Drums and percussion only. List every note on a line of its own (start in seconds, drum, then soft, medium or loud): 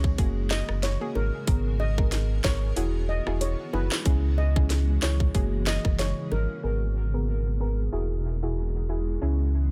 0.04 kick loud
0.18 kick medium
0.18 closed hi-hat medium
0.51 snare loud
0.51 clap medium
0.69 cross-stick loud
0.83 snare medium
0.83 closed hi-hat medium
0.83 high bongo medium
1.15 high bongo medium
1.15 low bongo medium
1.47 kick loud
1.47 closed hi-hat medium
1.80 high bongo medium
1.98 kick loud
1.98 high bongo medium
2.12 snare medium
2.12 closed hi-hat medium
2.12 high bongo medium
2.44 kick medium
2.44 snare loud
2.44 clap medium
2.44 low bongo medium
2.76 closed hi-hat medium
3.27 cross-stick medium
3.41 closed hi-hat medium
3.41 high bongo medium
3.74 high bongo medium
3.74 low bongo medium
3.92 snare loud
3.92 clap loud
4.06 kick loud
4.06 closed hi-hat medium
4.38 high bongo medium
4.56 kick loud
4.56 high bongo medium
4.70 snare medium
4.70 closed hi-hat medium
4.70 high bongo medium
5.02 snare loud
5.02 clap loud
5.02 low bongo medium
5.20 kick medium
5.35 kick medium
5.35 closed hi-hat medium
5.67 snare loud
5.67 clap medium
5.85 kick loud
5.85 cross-stick medium
5.99 snare medium
5.99 closed hi-hat medium
5.99 high bongo medium
6.32 high bongo medium
6.32 low bongo medium